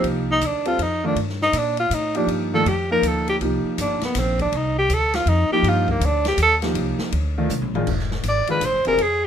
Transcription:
0.00 0.40 C2 medium
0.00 0.39 F3 medium
0.00 0.39 A#3 medium
0.00 0.40 D#4 medium
0.00 0.39 G4 medium
0.00 ride medium
0.32 0.48 D#4 loud
0.41 0.78 D2 medium
0.41 hi-hat pedal medium
0.41 ride medium
0.46 0.67 D4 medium
0.65 0.78 G3 medium
0.65 0.78 C4 medium
0.65 0.78 F4 medium
0.65 0.84 F4 medium
0.65 0.78 A4 medium
0.65 ride soft
0.79 1.15 F2 medium
0.79 ride medium
0.83 1.05 D#4 medium
1.04 1.16 D#3 medium
1.04 1.16 A3 medium
1.04 1.16 D4 medium
1.04 1.18 D4 medium
1.04 1.16 F4 medium
1.16 1.53 G2 medium
1.16 ride medium
1.29 snare soft
1.42 1.59 D#4 loud
1.42 snare soft
1.53 1.90 A#2 medium
1.53 hi-hat pedal medium
1.53 ride medium
1.57 1.79 D4 medium
1.77 1.96 F4 medium
1.77 ride soft
1.91 2.27 A2 medium
1.91 2.16 D#4 medium
1.91 hi-hat pedal medium
1.91 ride medium
2.15 2.63 F3 medium
2.15 2.64 A#3 medium
2.15 2.29 D4 medium
2.15 2.64 D#4 medium
2.15 2.64 G4 medium
2.15 ride soft
2.27 2.64 G2 medium
2.27 ride medium
2.53 2.65 D#3 medium
2.53 2.65 A3 medium
2.53 2.65 D4 medium
2.53 2.66 F4 medium
2.53 2.70 A4 loud
2.65 3.02 F2 medium
2.65 2.91 G4 medium
2.65 ride medium
2.91 3.39 F3 medium
2.91 3.39 A#3 medium
2.91 3.39 D#4 medium
2.91 3.39 F4 medium
2.91 3.09 A#4 loud
3.03 3.39 D2 medium
3.03 hi-hat pedal medium
3.03 ride medium
3.07 3.29 A4 medium
3.28 3.37 G4 medium
3.28 ride soft
3.41 3.63 C2 medium
3.41 4.45 F3 medium
3.41 4.45 A#3 medium
3.41 4.45 D#4 medium
3.41 4.45 G4 medium
3.41 ride medium
3.64 muted upright bass stroke soft
3.78 4.00 G1 medium
3.78 4.02 D4 medium
3.78 hi-hat pedal medium
3.78 ride medium
4.01 4.21 B3 medium
4.01 muted upright bass stroke soft
4.01 snare medium
4.01 ride medium
4.15 4.51 A#1 medium
4.15 snare soft
4.15 hi-hat pedal medium
4.15 ride medium
4.19 4.41 C4 medium
4.39 4.58 D4 medium
4.39 kick medium
4.39 ride soft
4.52 4.88 C2 medium
4.52 ride medium
4.56 4.78 D#4 medium
4.78 4.95 G4 loud
4.90 5.25 D2 medium
4.90 hi-hat pedal medium
4.90 ride medium
4.94 5.16 A4 loud
5.14 5.31 F4 medium
5.14 snare medium
5.14 ride soft
5.26 5.48 F2 loud
5.26 5.52 D#4 medium
5.26 ride medium
5.50 6.00 F3 medium
5.50 6.00 A#3 medium
5.50 6.00 D#4 medium
5.50 5.70 G4 loud
5.50 6.00 G4 medium
5.50 muted upright bass stroke soft
5.63 6.00 G2 medium
5.63 ride medium
5.68 5.90 F4 medium
5.88 6.07 A#3 medium
5.88 kick medium
6.00 6.37 D2 medium
6.00 hi-hat pedal medium
6.00 ride medium
6.05 6.27 D4 medium
6.25 6.39 G4 medium
6.25 snare medium
6.25 ride medium
6.37 6.74 D#2 loud
6.37 hi-hat pedal medium
6.37 ride medium
6.42 6.55 A4 loud
6.62 7.10 F3 medium
6.62 7.10 A#3 medium
6.62 7.10 D#4 medium
6.62 7.10 G4 medium
6.62 snare medium
6.62 ride medium
6.74 6.97 C2 medium
6.74 ride medium
6.99 muted upright bass stroke soft
6.99 snare medium
7.12 7.49 D2 medium
7.12 ride medium
7.38 7.49 D#3 medium
7.38 7.49 A3 medium
7.38 7.49 D4 medium
7.38 7.50 F4 medium
7.50 7.61 C2 medium
7.50 hi-hat pedal medium
7.50 high tom medium
7.61 7.73 A#1 medium
7.61 high tom medium
7.74 7.86 G1 medium
7.74 7.87 D#3 medium
7.74 7.87 G#3 medium
7.74 7.87 D4 medium
7.74 7.87 F4 medium
7.74 floor tom medium
7.87 8.23 F1 medium
7.87 kick medium
7.87 crash medium
7.99 snare soft
8.11 snare soft
8.23 8.46 G#1 medium
8.23 hi-hat pedal medium
8.23 ride medium
8.28 8.49 D5 medium
8.47 8.61 D#3 medium
8.47 8.61 G#3 medium
8.47 8.61 D4 medium
8.47 8.61 F4 medium
8.47 8.67 B4 medium
8.47 muted upright bass stroke soft
8.47 ride soft
8.61 8.73 A#1 medium
8.61 hi-hat pedal medium
8.61 ride medium
8.65 8.87 C5 loud
8.73 8.85 G#1 medium
8.85 8.97 F1 medium
8.85 8.98 G3 medium
8.85 8.98 C4 medium
8.85 8.98 F4 medium
8.85 8.98 G#4 medium
8.85 9.04 A#4 loud
8.85 ride soft
8.98 9.27 F2 medium
8.98 ride medium
9.02 9.26 G#4 medium

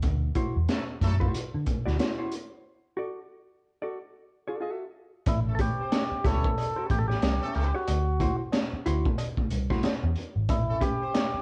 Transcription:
0.02 0.29 D2 loud
0.02 kick loud
0.02 closed hi-hat medium
0.35 0.56 E4 medium
0.35 0.57 F#4 medium
0.35 0.57 C5 medium
0.35 kick medium
0.35 closed hi-hat medium
0.56 0.66 E2 medium
0.69 0.81 F#3 medium
0.69 0.81 A3 medium
0.69 0.81 E4 medium
0.69 0.81 A4 medium
0.69 snare loud
0.69 closed hi-hat medium
1.01 1.27 F#2 medium
1.01 1.14 F#3 loud
1.01 1.14 A3 loud
1.01 1.14 E4 loud
1.01 1.14 A4 loud
1.01 kick medium
1.01 snare soft
1.01 closed hi-hat medium
1.20 1.39 E4 medium
1.20 1.38 F#4 medium
1.20 1.38 C5 medium
1.20 kick medium
1.34 muted picked electric bass stroke soft
1.34 closed hi-hat medium
1.54 1.64 D3 loud
1.66 kick medium
1.66 closed hi-hat medium
1.86 1.97 D2 medium
1.86 1.98 E4 medium
1.86 1.99 F#4 medium
1.86 2.00 D5 medium
1.86 snare soft
1.99 2.16 E4 medium
1.99 2.16 F#4 medium
1.99 2.16 C5 medium
1.99 snare loud
1.99 closed hi-hat medium
2.19 2.34 E4 medium
2.19 2.33 F#4 medium
2.19 2.33 C5 medium
2.32 closed hi-hat medium
2.97 3.18 F#4 medium
2.97 3.18 A4 medium
2.97 3.19 D5 medium
3.82 3.97 F#4 medium
3.82 3.97 A4 medium
3.82 3.97 D5 medium
4.47 4.59 F#4 medium
4.47 4.60 A4 medium
4.47 4.62 D5 medium
4.60 4.83 F#4 medium
4.60 4.84 A4 loud
4.60 4.84 E5 medium
5.26 5.67 A1 loud
5.26 5.40 E4 medium
5.26 kick loud
5.26 closed hi-hat medium
5.26 cowbell medium
5.47 5.55 E3 medium
5.47 5.55 A3 medium
5.47 5.54 C#4 medium
5.47 5.55 A4 medium
5.55 5.60 A4 medium
5.55 kick medium
5.55 closed hi-hat medium
5.59 5.80 G4 medium
5.59 6.27 G4 loud
5.59 5.80 B4 medium
5.59 5.80 C#5 medium
5.79 5.89 C4 medium
5.79 5.89 G4 medium
5.79 5.89 C5 medium
5.91 6.03 G3 medium
5.91 6.03 C#4 medium
5.91 6.03 E4 medium
5.91 6.03 C#5 medium
5.91 snare loud
5.91 closed hi-hat medium
5.91 cowbell medium
6.12 muted picked electric bass stroke soft
6.24 6.40 C#2 loud
6.24 6.50 G3 loud
6.24 6.50 C#4 loud
6.24 6.50 E4 loud
6.24 6.45 G4 medium
6.24 6.87 A4 loud
6.24 6.45 B4 medium
6.24 6.50 C#5 loud
6.24 6.46 E5 loud
6.24 kick medium
6.24 snare soft
6.24 closed hi-hat medium
6.45 kick loud
6.58 closed hi-hat medium
6.58 cowbell medium
6.76 6.87 E3 medium
6.76 6.87 A3 medium
6.76 6.87 C#4 medium
6.76 6.95 G4 medium
6.76 6.87 A4 medium
6.76 6.94 B4 medium
6.76 6.94 C#5 medium
6.89 7.15 A1 medium
6.89 7.01 E3 medium
6.89 7.02 G3 medium
6.89 7.01 C#4 medium
6.89 7.02 G4 medium
6.89 6.99 G4 loud
6.89 kick medium
6.89 closed hi-hat medium
6.99 7.07 A4 medium
7.08 7.55 G4 loud
7.08 7.21 G4 medium
7.08 7.21 B4 medium
7.08 7.20 C#5 medium
7.08 snare soft
7.22 7.38 C2 loud
7.22 snare loud
7.22 closed hi-hat medium
7.22 cowbell medium
7.41 7.68 E3 loud
7.41 7.68 A3 loud
7.41 7.68 C#4 loud
7.41 7.68 A4 loud
7.55 7.71 C#2 loud
7.55 7.76 G4 medium
7.55 closed hi-hat medium
7.75 8.36 F#4 loud
7.75 7.89 G4 medium
7.75 7.89 B4 medium
7.75 7.89 C#5 loud
7.88 8.29 D2 loud
7.88 closed hi-hat loud
7.88 cowbell medium
8.20 8.41 E4 medium
8.20 8.41 F#4 medium
8.20 8.41 C5 medium
8.20 kick medium
8.20 closed hi-hat medium
8.52 snare loud
8.52 closed hi-hat medium
8.52 cowbell medium
8.73 muted picked electric bass stroke medium
8.86 9.02 D2 medium
8.86 9.06 E4 loud
8.86 9.07 F#4 loud
8.86 9.07 C5 medium
8.86 closed hi-hat medium
9.05 kick loud
9.18 closed hi-hat medium
9.18 cowbell medium
9.37 kick medium
9.50 9.77 C2 medium
9.50 closed hi-hat medium
9.70 9.86 E4 medium
9.70 9.85 F#4 medium
9.70 9.85 C5 medium
9.70 kick medium
9.70 snare soft
9.83 muted picked electric bass stroke medium
9.83 snare loud
9.83 closed hi-hat medium
9.83 cowbell medium
10.04 10.14 E2 loud
10.16 closed hi-hat medium
10.36 10.49 G#1 medium
10.49 10.90 A1 loud
10.49 10.83 E4 medium
10.49 kick loud
10.49 closed hi-hat medium
10.49 cowbell medium
10.69 10.77 E3 medium
10.69 10.77 A3 medium
10.69 10.76 C#4 medium
10.69 10.77 A4 medium
10.81 11.02 C#4 medium
10.81 11.02 G4 medium
10.81 11.42 G4 loud
10.81 11.02 B4 medium
10.81 kick medium
10.81 closed hi-hat medium
11.01 11.12 C4 medium
11.01 11.12 G4 medium
11.01 11.12 C5 loud
11.14 11.26 G3 medium
11.14 11.26 C#4 medium
11.14 11.26 E4 medium
11.14 11.26 C#5 medium
11.14 snare loud
11.14 closed hi-hat loud
11.14 cowbell medium
11.34 muted picked electric bass stroke soft

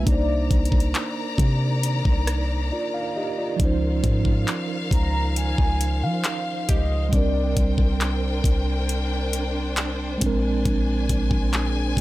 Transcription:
0.03 0.49 C2 loud
0.03 3.54 A#3 medium
0.03 3.55 D4 medium
0.03 kick loud
0.03 closed hi-hat medium
0.07 7.09 D#3 medium
0.07 3.57 D#4 medium
0.07 3.56 D5 medium
0.07 0.92 D5 medium
0.07 3.56 A#5 medium
0.12 2.70 C5 medium
0.51 0.93 C2 loud
0.51 kick medium
0.51 closed hi-hat medium
0.65 closed hi-hat medium
0.72 kick loud
0.80 closed hi-hat medium
0.95 clap loud
0.95 closed hi-hat medium
1.38 2.02 C3 loud
1.38 kick loud
1.38 closed hi-hat medium
1.83 closed hi-hat medium
2.05 2.71 C2 loud
2.05 kick medium
2.27 cross-stick loud
2.27 closed hi-hat medium
2.72 2.93 F4 medium
2.72 2.93 D5 medium
2.94 3.15 F5 medium
3.16 3.37 G4 medium
3.16 3.37 D#5 medium
3.38 3.80 F4 medium
3.38 3.80 D5 medium
3.56 4.02 C#2 loud
3.56 7.07 F3 medium
3.56 7.08 C#4 medium
3.56 12.01 C5 medium
3.56 7.09 F5 medium
3.56 kick loud
3.56 closed hi-hat medium
3.62 7.10 D#4 medium
3.62 7.11 C5 medium
4.04 4.46 G#2 loud
4.04 kick medium
4.04 closed hi-hat medium
4.25 kick medium
4.48 clap loud
4.48 closed hi-hat medium
4.91 5.55 C#2 loud
4.91 5.34 A#5 loud
4.91 kick loud
4.91 closed hi-hat medium
5.36 6.05 G#5 loud
5.36 closed hi-hat medium
5.58 6.04 C#2 loud
5.58 kick medium
5.81 closed hi-hat medium
6.03 6.23 F3 medium
6.03 6.69 F5 loud
6.24 clap loud
6.24 closed hi-hat medium
6.69 7.11 C#2 loud
6.69 7.53 G4 medium
6.69 7.15 D#5 medium
6.69 kick medium
6.69 closed hi-hat medium
7.09 7.55 C2 loud
7.09 10.16 G3 medium
7.09 10.17 C4 medium
7.09 12.01 D4 medium
7.09 10.18 A#4 medium
7.09 10.18 G5 medium
7.09 kick loud
7.09 closed hi-hat medium
7.14 10.18 D4 medium
7.14 10.20 A#4 medium
7.14 8.01 D5 medium
7.57 8.41 C2 loud
7.57 kick medium
7.57 closed hi-hat medium
7.78 kick medium
8.01 clap loud
8.01 closed hi-hat medium
8.44 10.17 C2 medium
8.44 kick loud
8.44 closed hi-hat medium
8.89 closed hi-hat medium
9.33 closed hi-hat medium
9.77 clap loud
9.77 closed hi-hat medium
10.18 12.01 G#3 medium
10.18 12.01 C4 medium
10.18 12.01 G#5 loud
10.18 closed hi-hat medium
10.22 10.64 A#1 loud
10.22 12.01 D4 medium
10.22 kick loud
10.26 12.01 A#4 medium
10.65 11.08 A#1 loud
10.65 kick loud
10.65 closed hi-hat medium
11.09 11.30 A#1 loud
11.09 kick loud
11.09 closed hi-hat medium
11.31 11.95 A#1 loud
11.31 kick loud
11.54 12.01 G#4 medium
11.54 clap loud
11.54 closed hi-hat medium
11.97 12.01 A#1 loud
11.97 kick loud

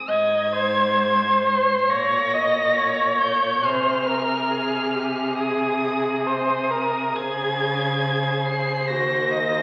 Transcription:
0.00 0.11 D#6 medium
0.09 1.84 G#2 medium
0.09 1.84 C5 medium
0.09 0.52 D#5 loud
0.09 1.48 G#6 loud
0.55 1.91 C5 medium
1.46 1.91 C7 loud
1.88 3.61 A#2 medium
1.88 3.60 C#5 medium
1.88 2.36 C#5 medium
1.88 3.21 A#6 loud
2.34 2.77 D#5 medium
2.77 3.66 C#5 medium
3.21 3.66 G6 medium
3.64 7.18 C3 medium
3.64 7.13 G#4 medium
3.64 4.09 C5 medium
3.64 5.37 F6 loud
4.08 4.52 A#4 medium
4.50 4.97 G#4 medium
4.95 5.41 G4 medium
5.37 5.82 G#4 medium
5.37 6.23 D#6 loud
5.83 6.28 G#4 medium
6.24 6.72 C5 medium
6.24 7.17 D#6 medium
6.71 7.17 A#4 medium
7.16 8.91 C#3 medium
7.16 8.91 G#4 medium
7.16 9.62 C5 medium
7.16 8.47 G#6 loud
8.45 8.89 C7 loud
8.87 9.62 D#2 medium
8.87 9.33 F#4 medium
8.87 9.62 A#6 loud
9.31 9.62 D#5 medium

